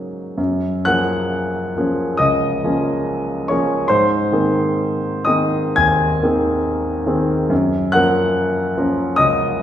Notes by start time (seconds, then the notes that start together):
Already playing: G#2 C#3 F#3 A#3 D#4
0.38 F#2
0.85 F3 A#3 C#4 G#4 F#5 F#6
1.77 F3 A#3 C#4 G#4
2.17 C#2 D#5 D#6
2.64 F3 A#3 C#4 G#4
3.48 F3 A#3 C#4 G#4 C#5 C#6
3.88 G#2 C5 C6
4.32 D#3 A#3 C4 G#4
5.25 D#3 A#3 C4 G#4 D#5 D#6
5.76 D#2 G#5 G#6
6.23 D#3 A#3 C4 G#4
7.06 D#3 A#3 C4 G#4
7.50 F#2
7.92 F3 A#3 C#4 A#4 F#5 F#6
8.77 F3 A#3 C#4 A#4
9.16 C#2 D#5 D#6